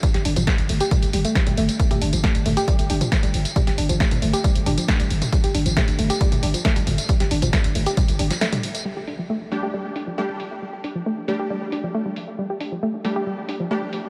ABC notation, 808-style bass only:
X:1
M:4/4
L:1/16
Q:1/4=136
K:Cdor
V:1 name="808-style bass" clef=bass
z G,,, G,,, G,,, z G,,, G,,, z2 G,,, G,,, z2 G,,, G,,, z | z G,,, G,,, G,,, z G,,, G,,, z2 G,,, G,,, z2 G,,, G,,, z | z G,,, G,,, G,,, z G,,, G,,, z2 G,,, G,,, z2 G,,, G,,, z | z G,,, G,,, G,,, z G,,, G,,, z2 G,,, G,,, z2 G,,, G,,, z |
z G,,, G,,, G,,, z G,,, G,,, z2 G,,, G,,, z4 z | z16 | z16 | z16 |]